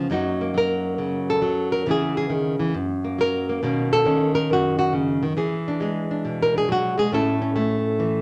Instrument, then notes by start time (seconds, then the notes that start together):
nylon-string guitar
Already playing: F3 F4
0.10 F#2 F#3 A#3 D#4 F#4
0.41 A#3
0.54 F#3 A#4
0.98 C#3
1.30 A4
1.42 F#3
1.72 A#4
1.86 C#3 E3 B3 E4
1.91 G#4
2.17 G#4
2.30 D#3
2.60 E3
2.75 F#2
3.05 A#3
3.19 F#3 A#4
3.49 A#3
3.63 B2 D#3 A#3 C#4
3.93 A4
4.05 D#3 C#4
4.35 A#4
4.50 F#2 F#4
4.79 F#4
4.93 C#3
5.23 D#3
5.37 E3 G#4
5.68 D4
5.80 G#3 G#4
6.11 D4
6.25 B2
6.42 A#4
6.54 D4 G#4
6.69 F#3 F#4
6.98 G#3 G#4
7.12 A2 A3 C#4 E4 A4
7.42 C#4
7.56 A3 E4
8.00 E3